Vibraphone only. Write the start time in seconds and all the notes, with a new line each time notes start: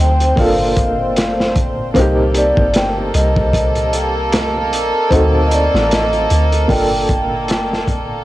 0.00 G5
0.40 F5
2.38 D5
2.76 G5
3.15 D#5
5.47 D#5
5.53 D5
5.92 D#5
6.70 G5